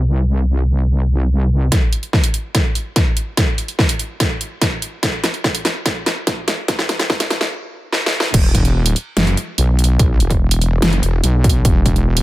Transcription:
Already playing: wobble bass C2
1.72 kick, snare, closed hi-hat
1.93 closed hi-hat
2.03 closed hi-hat
2.13 kick, snare
2.24 closed hi-hat
2.34 closed hi-hat
2.55 kick, snare, closed hi-hat
2.75 closed hi-hat
2.96 kick, snare, closed hi-hat
3.17 closed hi-hat
3.37 kick, snare, closed hi-hat
3.58 closed hi-hat
3.68 closed hi-hat
3.79 kick, snare
3.89 closed hi-hat
3.99 closed hi-hat
4.20 kick, snare, closed hi-hat
4.41 closed hi-hat
4.61 kick, snare, closed hi-hat
4.82 closed hi-hat
5.03 kick, snare, closed hi-hat
5.24 snare, closed hi-hat
5.34 closed hi-hat
5.44 kick, snare
5.55 closed hi-hat
5.65 snare, closed hi-hat
5.86 kick, snare, closed hi-hat
6.06 snare, closed hi-hat
6.27 kick, snare, closed hi-hat
6.48 snare, closed hi-hat
6.68 kick, snare, closed hi-hat
6.79 snare
6.89 snare, closed hi-hat
6.99 snare, closed hi-hat
7.10 kick, snare
7.20 snare, closed hi-hat
7.30 snare, closed hi-hat
7.41 snare
7.93 snare
8.06 snare
8.20 snare
8.34 wobble bass E1, kick, closed hi-hat, crash
8.55 wobble bass E1, kick, closed hi-hat
8.65 closed hi-hat
8.86 closed hi-hat
8.96 closed hi-hat
9.17 wobble bass F#1, snare, closed hi-hat
9.27 closed hi-hat
9.37 closed hi-hat
9.58 wobble bass B1, closed hi-hat
9.79 closed hi-hat
9.84 closed hi-hat
9.99 wobble bass B1, kick, closed hi-hat
10.20 wobble bass E1, closed hi-hat
10.30 kick, closed hi-hat
10.51 closed hi-hat
10.62 closed hi-hat
10.82 wobble bass F#1, snare, closed hi-hat
10.93 closed hi-hat
11.03 wobble bass E1, closed hi-hat
11.24 wobble bass B1, closed hi-hat
11.44 kick, closed hi-hat
11.49 closed hi-hat
11.65 wobble bass E1, kick, closed hi-hat
11.86 wobble bass E1, kick, closed hi-hat
11.96 closed hi-hat
12.17 closed hi-hat

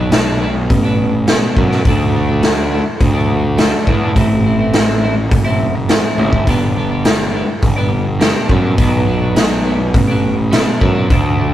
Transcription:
Already playing: picked electric bass B1, clean electric guitar D4
0.00 clean electric guitar F#3 B3
0.10 clean electric guitar B2 F#3 B3, snare, open hi-hat
0.14 clean electric guitar D4
0.40 clean electric guitar B2 F#3 B3 D4
0.55 muted clean electric guitar stroke
0.70 picked electric bass A1, kick, open hi-hat
0.83 clean electric guitar F#3 B3 D4
1.13 muted clean electric guitar stroke
1.27 clean electric guitar B2 F#3 B3 D4, snare, open hi-hat
1.56 picked electric bass F#2, clean electric guitar B2 F#3 B3 D4, kick
1.70 clean electric guitar F#3 B3 D4, snare
1.85 picked electric bass D2, clean electric guitar D3 F#3 A3, kick, open hi-hat
1.89 clean electric guitar D4
2.14 clean electric guitar D3 F#3 A3 D4
2.27 clean electric guitar F#3 A3 D4
2.42 clean electric guitar D3 F#3 A3 D4, snare, open hi-hat
2.71 clean electric guitar D3 F#3 A3 D4
2.86 muted clean electric guitar stroke
3.00 picked electric bass D2, kick, open hi-hat
3.14 clean electric guitar F#3 A3 D4
3.44 muted clean electric guitar stroke
3.57 clean electric guitar D3 F#3 A3 D4, snare, open hi-hat
3.87 picked electric bass E2, clean electric guitar D3 F#3 A3, kick
3.91 clean electric guitar D4
4.01 clean electric guitar F#3 A3 D4
4.15 picked electric bass A1, clean electric guitar A2 E3 A3 C4 E4, kick, open hi-hat
4.44 clean electric guitar E3 A3 C4 E4
4.59 clean electric guitar A3 C4 E4
4.73 clean electric guitar A2 E3 A3 C4 E4, snare, open hi-hat
5.01 clean electric guitar E3 A3 C4 E4
5.16 muted clean electric guitar stroke
5.31 picked electric bass F#1, kick, open hi-hat
5.44 clean electric guitar A3 C4 E4
5.76 muted clean electric guitar stroke
5.89 clean electric guitar A2 E3 A3 C4 E4, snare, open hi-hat
6.17 picked electric bass A1, clean electric guitar E3 A3 C4 E4, high tom
6.32 picked electric bass G1, clean electric guitar A3 C4 E4, kick
6.47 picked electric bass G1, clean electric guitar G2 D3 G3 B3 D4, kick, open hi-hat
6.75 clean electric guitar D3 G3 B3 D4
6.90 clean electric guitar G3 B3 D4
7.03 clean electric guitar G2 D3 G3 B3 D4, snare, open hi-hat
7.32 clean electric guitar D3 G3 B3 D4
7.48 muted clean electric guitar stroke
7.62 picked electric bass G1, kick, open hi-hat
7.76 clean electric guitar G3 B3 D4
8.06 muted clean electric guitar stroke
8.20 clean electric guitar G2 D3 G3 B3 D4, snare, open hi-hat
8.49 picked electric bass F#2, clean electric guitar D3 G3 B3 D4, kick
8.63 clean electric guitar G3 B3 D4
8.77 picked electric bass B1, clean electric guitar B2 F#3 B3 D4, kick, open hi-hat
9.05 clean electric guitar B2 F#3 B3 D4
9.20 clean electric guitar F#3 B3 D4
9.35 clean electric guitar B2 F#3 B3 D4, snare, open hi-hat
9.64 clean electric guitar B2 F#3 B3 D4
9.80 muted clean electric guitar stroke
9.94 picked electric bass A1, kick, open hi-hat
10.08 clean electric guitar F#3 B3 D4
10.37 muted clean electric guitar stroke
10.51 clean electric guitar B2 F#3 B3 D4, snare, open hi-hat
10.79 picked electric bass F#2, clean electric guitar B2 F#3 B3 D4, kick
10.94 clean electric guitar F#3 B3 D4
11.08 picked electric bass D2, clean electric guitar D3 F#3 A3 D4, kick, open hi-hat
11.38 clean electric guitar D3 F#3 A3 D4

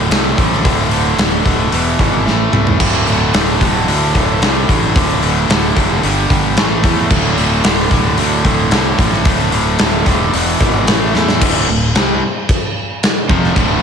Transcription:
Already playing: distorted electric guitar D3
0.10 fingered electric bass C2, distorted electric guitar D2 A2 D3, snare, open hi-hat
0.37 fingered electric bass A1, distorted electric guitar D2 A2 D3, kick, open hi-hat
0.53 snare
0.64 fingered electric bass D1, distorted electric guitar D2 A2 D3, kick, open hi-hat
0.90 distorted electric guitar D2 A2 D3, open hi-hat
1.18 fingered electric bass D1, distorted electric guitar D2 A2 D3, snare, open hi-hat
1.44 fingered electric bass D1, distorted electric guitar D2 A2 D3, kick, open hi-hat
1.71 fingered electric bass E1, distorted electric guitar E2 B2 E3, open hi-hat
1.99 fingered electric bass G#1, distorted electric guitar E2 B2 E3, kick, open hi-hat
2.25 fingered electric bass A1, distorted electric guitar A2 E3 A3, snare
2.52 fingered electric bass C2, distorted electric guitar A2 E3 A3, mid tom
2.67 floor tom
2.78 fingered electric bass D1, distorted electric guitar D2 A2 D3, kick, splash, crash
3.07 distorted electric guitar D2 A2 D3, open hi-hat
3.33 fingered electric bass D1, distorted electric guitar D2 A2 D3, snare, open hi-hat
3.59 fingered electric bass D1, distorted electric guitar D2 A2 D3, kick, open hi-hat
3.87 distorted electric guitar D2 A2 D3, fingered electric bass D2, open hi-hat
4.14 fingered electric bass D1, distorted electric guitar D2 A2 D3, kick, open hi-hat
4.41 fingered electric bass C2, distorted electric guitar D2 A2 D3, snare, open hi-hat
4.68 fingered electric bass A1, distorted electric guitar D2 A2 D3, kick, open hi-hat
4.96 fingered electric bass D1, distorted electric guitar D2 A2 D3, kick, open hi-hat
5.23 distorted electric guitar D2 A2 D3, open hi-hat
5.49 fingered electric bass D1, distorted electric guitar D2 A2 D3, snare, open hi-hat
5.75 fingered electric bass F1, distorted electric guitar D2 A2 D3, kick, open hi-hat
6.03 fingered electric bass G1, distorted electric guitar G2 D3 G3, open hi-hat
6.30 fingered electric bass G1, distorted electric guitar G2 D3 G3, kick, open hi-hat
6.57 fingered electric bass A1, distorted electric guitar A2 E3 A3, snare, open hi-hat
6.84 fingered electric bass E2, distorted electric guitar A2 E3 A3, kick, open hi-hat
7.10 fingered electric bass D1, distorted electric guitar D2 A2 D3, kick, crash
7.38 distorted electric guitar D2 A2 D3, open hi-hat
7.64 fingered electric bass D1, distorted electric guitar D2 A2 D3, snare, open hi-hat
7.91 fingered electric bass D1, distorted electric guitar D2 A2 D3, kick, open hi-hat
8.18 distorted electric guitar D2 A2 D3, fingered electric bass D2, open hi-hat
8.45 fingered electric bass D1, distorted electric guitar D2 A2 D3, kick, open hi-hat
8.71 fingered electric bass C2, distorted electric guitar D2 A2 D3, snare, open hi-hat
8.99 fingered electric bass A1, distorted electric guitar D2 A2 D3, kick, open hi-hat
9.13 snare
9.25 fingered electric bass D1, distorted electric guitar D2 A2 D3, kick, open hi-hat
9.52 distorted electric guitar D2 A2 D3, open hi-hat
9.79 fingered electric bass D1, distorted electric guitar D2 A2 D3, snare, open hi-hat
10.06 fingered electric bass D#1, distorted electric guitar D2 A2 D3, kick, open hi-hat
10.32 fingered electric bass E1, distorted electric guitar E2 B2 E3, open hi-hat
10.60 fingered electric bass G#1, distorted electric guitar E2 B2 E3, kick, open hi-hat
10.86 fingered electric bass A1, distorted electric guitar A2 E3 A3, snare, open hi-hat
11.14 fingered electric bass E2, distorted electric guitar A2 E3 A3, snare
11.28 snare
11.41 fingered electric bass D1, distorted electric guitar D2 A2 D3, kick, crash
11.69 fingered electric bass D1, distorted electric guitar D2 A2
11.95 fingered electric bass C2, distorted electric guitar C3 G3 C4, snare, crash
12.49 kick, crash
13.03 snare, crash
13.29 fingered electric bass F1, distorted electric guitar F2 C3 F3, kick
13.44 snare
13.55 fingered electric bass D1, distorted electric guitar D2 A2 D3, kick, crash

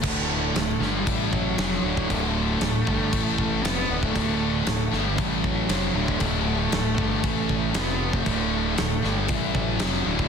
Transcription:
Already playing: cello A3
0.02 fingered electric bass D1, distorted electric guitar D2 A2 D3, kick, crash
0.55 fingered electric bass D1, distorted electric guitar D2 A2, cello A3, snare, crash
0.80 fingered electric bass G1, distorted electric guitar G2 D3 G3, snare
0.94 cello G3
1.07 fingered electric bass A1, distorted electric guitar A2 E3 A3, kick, crash
1.32 cello F#3, kick
1.58 fingered electric bass F1, distorted electric guitar F2 C3 F3, snare, crash
1.72 snare
1.83 fingered electric bass D1, distorted electric guitar D2 A2 D3
1.97 kick
2.08 fingered electric bass D1, distorted electric guitar D2 A2 D3, cello A3, kick, crash
2.35 cello A3
2.61 fingered electric bass D1, distorted electric guitar D2 A2, snare, crash
2.85 fingered electric bass G1, distorted electric guitar G2 D3 G3, kick
3.12 fingered electric bass A1, distorted electric guitar A2 E3 A3, kick, crash
3.38 kick
3.64 fingered electric bass F1, distorted electric guitar F2 C3 F3, cello B3, snare, crash
3.88 fingered electric bass D1, distorted electric guitar D2 A2 D3
4.03 cello A3, kick
4.14 fingered electric bass D1, distorted electric guitar D2 A2 D3, kick, crash
4.66 fingered electric bass D1, distorted electric guitar D2 A2, cello A3, snare, crash
4.92 fingered electric bass G1, distorted electric guitar G2 D3 G3, snare
5.05 cello G3
5.17 fingered electric bass A1, distorted electric guitar A2 E3 A3, kick, crash
5.43 cello F#3, kick
5.68 fingered electric bass F1, distorted electric guitar F2 C3 F3, snare, crash
5.93 fingered electric bass D1, distorted electric guitar D2 A2 D3
6.08 kick
6.19 fingered electric bass D1, distorted electric guitar D2 A2 D3, cello A3, kick, crash
6.46 cello A3
6.71 fingered electric bass D1, distorted electric guitar D2 A2, snare, crash
6.97 fingered electric bass G1, distorted electric guitar G2 D3 G3, kick
7.23 fingered electric bass A1, distorted electric guitar A2 E3 A3, kick, crash
7.49 kick
7.74 fingered electric bass F1, distorted electric guitar F2 C3 F3, cello B3, snare, crash
7.88 snare
8.13 cello A3, kick
8.24 fingered electric bass D1, distorted electric guitar D2 A2 D3, kick, crash
8.76 fingered electric bass D1, distorted electric guitar D2 A2, cello A3, snare, crash
9.02 fingered electric bass G1, distorted electric guitar G2 D3 G3, snare
9.17 cello G3
9.28 fingered electric bass A1, distorted electric guitar A2 E3 A3, kick, crash
9.55 cello F#3, kick
9.79 fingered electric bass F1, distorted electric guitar F2 C3 F3, snare, crash
9.94 snare
10.06 fingered electric bass D1, distorted electric guitar D2 A2 D3
10.19 kick

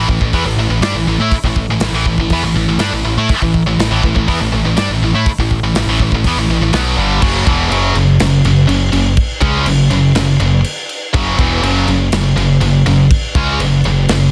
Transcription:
0.08 picked electric bass A1, distorted electric guitar A2 E3, kick
0.20 picked electric bass A1, distorted electric guitar A2 E3, kick
0.33 picked electric bass E2, distorted electric guitar E3 B3, kick, open hi-hat
0.44 picked electric bass A1, distorted electric guitar A2 E3
0.56 picked electric bass A1, distorted electric guitar A2 E3
0.69 picked electric bass A1, distorted electric guitar A2 E3
0.80 picked electric bass G2, distorted electric guitar G3 D4, snare, open hi-hat
0.94 picked electric bass A1, distorted electric guitar A2 E3
1.06 picked electric bass A1, distorted electric guitar A2 E3
1.18 picked electric bass A2, distorted electric guitar A3 E4
1.32 kick, open hi-hat
1.43 picked electric bass A1, distorted electric guitar A2 E3, kick
1.56 kick
1.68 picked electric bass A1, distorted electric guitar A2 E3
1.80 picked electric bass A1, distorted electric guitar A2 E3, snare, open hi-hat
1.91 picked electric bass A1, distorted electric guitar A2
1.95 distorted electric guitar E3
2.05 picked electric bass A1, distorted electric guitar A2 E3, kick
2.18 picked electric bass A1, distorted electric guitar A2 E3, kick
2.30 picked electric bass E2, distorted electric guitar E3 B3, kick, open hi-hat
2.42 picked electric bass A1, distorted electric guitar A2 E3
2.54 picked electric bass A1, distorted electric guitar A2 E3
2.68 picked electric bass A1, distorted electric guitar A2 E3
2.78 picked electric bass G2, distorted electric guitar G3 D4, snare, open hi-hat
2.92 picked electric bass A1, distorted electric guitar A2 E3
3.05 picked electric bass A1, distorted electric guitar A2 E3
3.17 picked electric bass A2, distorted electric guitar A3 E4
3.29 kick, open hi-hat
3.42 picked electric bass A1, distorted electric guitar A2 E3, kick
3.54 kick
3.65 picked electric bass A1, distorted electric guitar A2 E3
3.77 picked electric bass A1, distorted electric guitar A2 E3, snare, open hi-hat
3.90 picked electric bass A1, distorted electric guitar A2 E3
4.03 picked electric bass A1, distorted electric guitar A2 E3, kick
4.15 picked electric bass A1, distorted electric guitar A2 E3, kick
4.28 picked electric bass E2, distorted electric guitar E3 B3, kick, open hi-hat
4.40 picked electric bass A1, distorted electric guitar A2 E3
4.52 picked electric bass A1, distorted electric guitar A2 E3
4.64 picked electric bass A1, distorted electric guitar A2 E3
4.76 picked electric bass G2, distorted electric guitar G3 D4, snare, open hi-hat
4.89 picked electric bass A1, distorted electric guitar A2 E3
5.01 picked electric bass A1, distorted electric guitar A2 E3
5.13 picked electric bass A2, distorted electric guitar A3 E4
5.26 kick, open hi-hat
5.38 picked electric bass A1, distorted electric guitar A2 E3, kick
5.51 kick
5.62 picked electric bass A1, distorted electric guitar A2 E3
5.74 picked electric bass A1, distorted electric guitar A2 E3, snare, open hi-hat
5.86 picked electric bass A1, distorted electric guitar A2 E3
5.99 picked electric bass A1, distorted electric guitar A2 E3, kick
6.12 picked electric bass A1, distorted electric guitar A2 E3, kick
6.24 picked electric bass E2, distorted electric guitar E3 B3, kick, open hi-hat
6.36 picked electric bass A1, distorted electric guitar A2 E3
6.48 picked electric bass A1, distorted electric guitar A2 E3
6.60 picked electric bass A1, distorted electric guitar A2 E3
6.73 picked electric bass B1, distorted electric guitar B2 F#3 B3, snare, open hi-hat
6.97 picked electric bass G1, distorted electric guitar G2 D3 G3
7.22 picked electric bass F#1, distorted electric guitar F#2 C#3 F#3, kick, crash
7.45 picked electric bass E1, distorted electric guitar E2 B2 E3, kick, crash
7.70 picked electric bass F#1, distorted electric guitar F#2 C#3 F#3, crash
7.95 picked electric bass F#1, distorted electric guitar F#2 C#3, crash
8.20 picked electric bass F#1, distorted electric guitar F#2 C#3, snare, crash
8.44 picked electric bass F#1, distorted electric guitar F#2 C#3, crash
8.68 picked electric bass F#1, distorted electric guitar F#2 C#3, crash
8.92 picked electric bass F#1, distorted electric guitar F#2 C#3, crash
9.17 kick, crash
9.41 picked electric bass C#2, distorted electric guitar C#3 G#3 C#4, kick, crash
9.66 picked electric bass F#1, distorted electric guitar F#2 C#3, crash
9.90 picked electric bass F#1, distorted electric guitar F#2 C#3, crash
10.15 picked electric bass F#1, distorted electric guitar F#2 C#3, snare, crash
10.40 picked electric bass F#1, distorted electric guitar F#2 C#3, crash
10.64 crash
10.89 crash
11.14 picked electric bass F#1, distorted electric guitar F#2 C#3 F#3, kick, crash
11.38 picked electric bass E1, distorted electric guitar E2 B2 E3, kick, crash
11.62 picked electric bass F#1, distorted electric guitar F#2 C#3 F#3, crash
11.87 picked electric bass F#1, distorted electric guitar F#2 C#3, crash
12.12 picked electric bass F#1, distorted electric guitar F#2 C#3, snare, crash
12.36 picked electric bass F#1, distorted electric guitar F#2 C#3, crash
12.61 picked electric bass F#1, distorted electric guitar F#2 C#3, crash
12.85 picked electric bass F#1, distorted electric guitar F#2 C#3, crash
13.11 kick, crash
13.35 picked electric bass C#2, distorted electric guitar C#3 G#3 C#4, kick, crash
13.58 picked electric bass F#1, distorted electric guitar F#2 C#3, crash
13.84 picked electric bass F#1, distorted electric guitar F#2 C#3, crash
14.08 picked electric bass F#1, distorted electric guitar F#2 C#3, snare, crash

